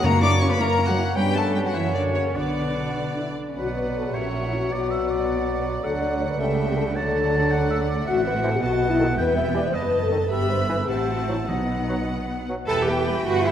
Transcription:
0.03 double bass section F#2, timpani F#2, cello section A#3, bassoon A#3, french horn section A#3, violin section C#4 E4 A#5, clarinet F#4, viola section A#4, oboe C#5, flute A#5
0.21 violin section C#4 E4 D6, cello section D4, french horn section D4, viola section D5, flute D6
0.41 cello section C#4, violin section C#4 E4 C#6, french horn section C#4, viola section C#5, flute C#6
0.49 cello section B3, french horn section B3, viola section B4, flute B5, violin section B5
0.58 double bass section F#2, cello section A#3, french horn section A#3, violin section C#4 E4 A#5, viola section A#4, clarinet A#4, flute A#5
0.78 violin section C#4 E4
0.87 cello section F#3, french horn section F#3, viola section F#4, violin section F#5, flute F#5
0.97 violin section C#4 E4
1.16 double bass section G2, cello section G3, french horn section G3, violin section B3 D4 G5, bassoon C#4, viola section G4, clarinet B4, oboe B4, flute G5
1.34 cello section A3, french horn section A3, viola section A4, violin section A5, flute A5
1.54 cello section G3, french horn section G3, viola section G4, violin section G5, flute G5
1.65 cello section F#3, french horn section F#3, viola section F#4, flute F#5, violin section F#5
1.74 double bass section F#2, cello section E3, french horn section E3, violin section A#3 F#4 E5, viola section E4, clarinet C#5, oboe C#5, flute E5
1.94 cello section D3, french horn section D3, viola section D4, violin section D5, flute D5
2.15 cello section C#3, french horn section C#3, viola section C#4, violin section C#5, flute C#5
2.35 double bass section B1, french horn section D3, cello section D3, violin section B3 F#4 D5, bassoon B3, viola section D4, clarinet D5, flute D5, oboe F#5
2.97 violin section B3
3.17 violin section E4
3.37 violin section D4
3.49 violin section C#4
3.57 double bass section B1, cello section B2, bassoon F#3, viola section B3, french horn section F#4, oboe B4, violin section D5 F#5, clarinet D5
3.77 french horn section B4
3.96 french horn section A4
4.07 french horn section G4
4.14 double bass section A#1, cello section A#2, viola section C#4, french horn section F#4, oboe C#5, violin section E5, clarinet E5
4.45 french horn section E4
4.54 french horn section F#4
4.72 double bass section B1, cello section B2, viola section B3, french horn section F#4, oboe D5, clarinet D5, violin section D5
4.91 oboe E5
5.10 oboe D5
5.83 double bass section D2, cello section D3, bassoon F#3, viola section A3, french horn section A4, violin section F#5, oboe F#5
6.01 french horn section D5
6.19 french horn section C#5
6.29 french horn section B4
6.38 double bass section C#2, cello section C#3, bassoon G3, french horn section A4, clarinet E5, violin section E5 G5
6.67 french horn section G4
6.76 french horn section A4
6.94 double bass section D2, cello section D3, bassoon F#3, french horn section A4, clarinet D5, violin section D5 F#5, oboe A5
7.51 oboe F#5
7.70 oboe E5
7.89 oboe D5
8.06 double bass section A1, cello section A2, viola section C4, french horn section F#4, violin section E5, oboe F#5
8.25 french horn section B4
8.43 bassoon E3, french horn section A4, clarinet C5
8.54 french horn section G4
8.61 double bass section B1, cello section B2, viola section B3, french horn section F#4, violin section D#5 A5, oboe F#5
8.88 french horn section E4
8.99 bassoon D#3, clarinet A4
9.17 double bass section E1, cello section E2, timpani E2, french horn section B4, violin section E5 G5, oboe G5
9.36 french horn section E5
9.54 bassoon E3, clarinet G4, french horn section D5
9.64 french horn section C5
9.72 double bass section F#1, cello section F#2, french horn section B4, oboe D#5, violin section D#5 A5
10.00 french horn section A4
10.11 bassoon D#3, clarinet A4
10.29 double bass section G1, cello section G2, viola section B3, french horn section G4, oboe E5, violin section E5 B5
10.49 french horn section C5
10.68 bassoon E3, french horn section B4, clarinet B4
10.78 french horn section A4
10.87 double bass section A1, cello section A2, viola section C4, french horn section G4, oboe E5, violin section F#5 A5
11.07 french horn section F#4
11.28 bassoon F#3, french horn section E4, clarinet C5
11.48 double bass section B1, cello section B2, timpani B2, viola section B3, french horn section D#4, oboe D#5, violin section F#5
11.89 bassoon F#3, clarinet B4
12.48 bassoon F#3, clarinet B4
12.68 double bass section E1, bassoon E3, viola section G3 B4, french horn section B3 G4, cello section A4, clarinet B4, violin section G5 A5 B5, flute A5, oboe B5
12.87 viola section B3 G4, cello section G4, violin section E5 G5, flute G5
13.07 viola section G3 B4, violin section G5 B5
13.26 double bass section G1, viola section G3 B4, french horn section B3 G4, cello section F#4, flute F#5, violin section F#5 G5 B5
13.45 viola section B3 G4, cello section E4, flute E5, violin section E5 G5

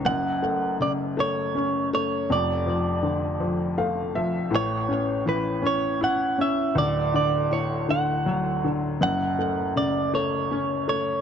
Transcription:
0.05 upright piano F#1 F#2, clean electric guitar F#5
0.42 upright piano A3
0.80 upright piano C#3, clean electric guitar D5
1.17 upright piano A3, clean electric guitar C#5
1.55 upright piano C#4
1.93 upright piano A3, clean electric guitar C#5
2.30 upright piano F1 F2, clean electric guitar D5
2.67 upright piano F3
3.03 upright piano D3
3.40 upright piano F3
3.78 upright piano A3 F5
4.15 upright piano F3 E5
4.50 upright piano A1 A2
4.55 clean electric guitar C#5
4.89 upright piano C#4
5.26 upright piano E3, clean electric guitar B4
5.62 upright piano C#4
5.67 clean electric guitar C#5
6.01 upright piano E4, clean electric guitar F#5
6.38 upright piano C#4, clean electric guitar E5
6.75 upright piano D1 D2, clean electric guitar D5
7.14 upright piano D3, clean electric guitar D5
7.51 upright piano A2, clean electric guitar C#5
7.89 upright piano D3, clean electric guitar F#5
8.26 upright piano F#3
8.64 upright piano D3
9.01 upright piano F#1 F#2, clean electric guitar F#5
9.39 upright piano A3
9.76 upright piano C#3, clean electric guitar D5
10.14 upright piano A3, clean electric guitar C#5
10.51 upright piano C#4
10.88 upright piano A3, clean electric guitar C#5

